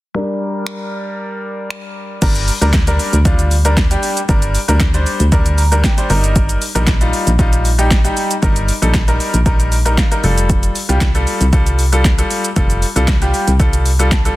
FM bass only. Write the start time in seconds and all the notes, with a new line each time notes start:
2.22 G1
2.62 D2
3.13 D2
4.29 G1
4.68 D2
5.20 D2
6.10 G1
6.75 A#1
7.27 A#1
8.43 G1
8.82 A#1
9.34 A#1
10.24 F1
10.89 C2
11.41 C2
12.56 F1
12.96 C2
13.48 C2